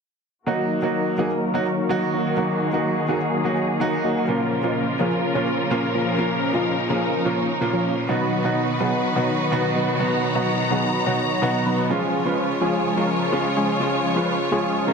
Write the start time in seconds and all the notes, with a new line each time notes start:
0.46 D#3 F#3 A#3 D#4 F#4 A#4
0.82 F#3 A#3 D#4 F#4 D#5
1.18 F#3 A#3 D#4 F#4 G#4 A#4
1.54 F#3 A#3 D#4 F#4 C#5
1.89 F#3 A#3 D#4 F#4 A#4
2.14 F#3 A#3 D#4 F#4 A#4
2.37 F#3 A#3 D#4 F#4 G#4 A#4
2.73 F#3 A#3 D#4 F#4 D#5
3.08 F#3 A#3 D#4 F#4 G#4 A#4
3.44 F#3 A#3 D#4 F#4 C#5
3.80 F#3 A#3 D#4 F#4 A#4
4.04 F#3 A#3 D#4 F#4 A#4
4.27 A#2 C#3 F3 A#3 C#4 F4 A#4
4.63 A#2 F3 A#3 C#4 F4 D#5
4.99 A#2 F3 A#3 C#4 F4 G#4 A#4
5.34 A#2 F3 A#3 C#4 F4 C#5
5.70 A#2 F3 A#3 C#4 F4 A#4
5.95 F3 A#3 C#4 F4 A#4
6.18 A#2 F3 A#3 C#4 D#4 F4 A#4
6.53 A#2 F3 A#3 C#4 F4 D#5
6.89 A#2 F3 A#3 C#4 F4 G#4 A#4
7.25 A#2 F3 A#3 C#4 F4 C#5
7.38 F3 A#3 C#4 F4 C#5
7.61 A#2 F3 A#3 C#4 F4
7.73 F3 A#3 C#4 F4 C#5
8.08 B2 D#3 F#3 B3 D#4 F#4 B4
8.44 B2 F#3 B3 D#4 F#4 D#5
8.80 B2 F#3 B3 D#4 F#4 G#4 B4
9.16 B2 F#3 B3 D#4 F#4 C#5
9.51 B2 F#3 B3 D#4 F#4 B4
9.76 F#3 B3 D#4 F#4 B4
9.99 B2 F#3 B3 D#4 F#4 B4 A#5
10.35 B2 F#3 B3 D#4 F#4 D#5
10.70 B2 F#3 B3 D#4 F#4 G#4 B4
11.06 B2 F#3 B3 D#4 F#4 C#5
11.42 B2 F#3 B3 D#4 F#4 B4
11.66 F#3 B3 D#4 F#4 B4
11.89 C#3 F3 G#3 C#4 F4 G#4 C#5
12.25 F3 G#3 C#4 F4 B4
12.61 F3 G#3 C#4 F4 G#4
12.96 F3 G#3 C#4 F4 A#4
13.32 F3 G#3 C#4 F4 G#4
13.57 F3 G#3 C#4 F4 G#4
13.80 F3 G#3 C#4 F4 G#4
14.16 F3 G#3 C#4 F4 B4
14.51 F3 G#3 C#4 F4 G#4
14.76 swell
14.87 F3 G#3 C#4 F4 A#4